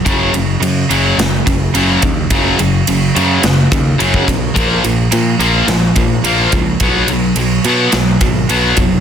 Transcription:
<<
  \new Staff \with { instrumentName = "Distorted electric guitar" } { \clef bass \time 4/4 \key ges \major \tempo 4 = 107 <ges, des ges>8 <ges, des>8 <ges, des>8 <ges, des ges>8 <ges, des>8 <ges, des>8 <ges, des ges>8 <ges, des>8 | <ges, des ges>8 <ges, des>8 <ges, des>8 <ges, des ges>8 <ges, des>8 <ges, des>8 <ges, des ges>8 <ges, des>8 | <bes, f bes>8 <bes, f>8 <bes, f>8 <bes, f bes>8 <bes, f>8 <bes, f>8 <bes, f bes>8 <bes, f>8 | <b, fis b>8 <b, fis>8 <b, fis>8 <b, fis b>8 <b, fis>8 <b, fis>8 <b, fis b>8 <b, fis>8 | }
  \new Staff \with { instrumentName = "Overdriven electric guitar" } { \clef bass \time 4/4 \key ges \major <ges, des ges>8 <ges, des>8 <ges, des>8 <ges, des ges>8 <ges, des>8 <ges, des>8 <ges, des ges>8 <ges, des>8 | <ges, des ges>8 <ges, des>8 <ges, des>8 <ges, des ges>8 <ges, des>8 <ges, des>8 <ges, des ges>8 <ges, des>8 | <bes, f bes>8 <bes, f>8 <bes, f>8 <bes, f bes>8 <bes, f>8 <bes, f>8 <bes, f bes>8 <bes, f>8 | <b, fis b>8 <b, fis>8 <b, fis>8 <b, fis b>8 <b, fis>8 <b, fis>8 <b, fis b>8 <b, fis>8 | }
  \new Staff \with { instrumentName = "Picked electric bass" } { \clef bass \time 4/4 \key ges \major ges,,8 ges,,8 ges,8 ges,,8 ges,,8 ges,,8 ges,,8 ees,8 | ges,,8 ges,,8 ges,,8 ges,8 ges,,8 ees,8 ges,,8 ces,8 | bes,,8 bes,,8 bes,8 bes,,8 bes,,8 bes,,8 bes,,8 des,8 | b,,8 b,,8 b,,8 b,8 b,,8 aes,,8 b,,8 f,,8 | }
  \new DrumStaff \with { instrumentName = "Drums" } \drummode { \time 4/4 <bd cymr>8 cymr8 cymr8 cymr8 <cymr sn>8 <bd cymr>8 cymr8 <bd cymr>8 | <bd cymr>8 cymr8 cymr8 cymr8 <cymr sn>8 <bd cymr>8 cymr16 bd16 <bd cymr>8 | <bd cymr>8 cymr8 cymr8 cymr8 <cymr sn>8 <bd cymr>8 cymr8 <bd cymr>8 | <bd cymr>8 cymr8 cymr8 cymr8 <cymr sn>8 <bd cymr>8 cymr8 <bd cymr>8 | }
>>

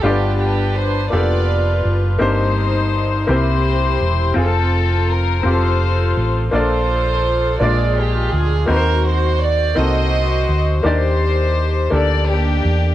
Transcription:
<<
  \new Staff \with { instrumentName = "String section" } { \time 6/8 \key ees \lydian \tempo 4. = 56 << { g'8 g'8 c''8 d''4 r8 | c''4. c''4. | a'4 bes'8 c''4 r8 | c''4. d''8 g'8 aes'8 |
bes'8 c''8 d''8 ees''4 r8 | c''4. d''8 g'4 | } \\ { <d' b'>4. <f' b'>4. | ees'4. <e' g'>4. | <c' f'>4. <f' a'>4. | <f' a'>4. <f' aes'>4. |
ges'4. <ges' c''>4. | g'4. r8 <bes d'>4 | } >> }
  \new Staff \with { instrumentName = "Upright piano" } { \time 6/8 \key ees \lydian <a b d' f' g' d''>4 r8 <bes b d' f' g' a'>4 r8 | <bes c' ees' g' c''>4 r8 <bes c' e' g' c''>4 r8 | <c' f' aes' a'>4 r8 <c' f' g' a'>4 r8 | <bes d' f' a' d''>4 r8 <aes bes d' f' d''>4 r8 |
<bes c' ees' ges' ces'' c''>4 r8 <bes c' ees' ges' a'>4 r8 | <bes d' ees' g' d''>4 r8 <bes d' g' a'>4 r8 | }
  \new Staff \with { instrumentName = "Upright piano" } { \clef bass \time 6/8 \key ees \lydian g,4. r4. | g,4. c4. | r2. | bes,4. bes,4. |
ees4. r4. | ees4. r4. | }
  \new Staff \with { instrumentName = "Fingered electric bass" } { \clef bass \time 6/8 \key ees \lydian g,,4. f,,4 ges,,8 | g,,4. c,4 e,,8 | f,,4. f,,4 a,,8 | bes,,4. bes,,4 d,8 |
ees,4. c,4 d,8 | ees,4. d,4 e,8 | }
>>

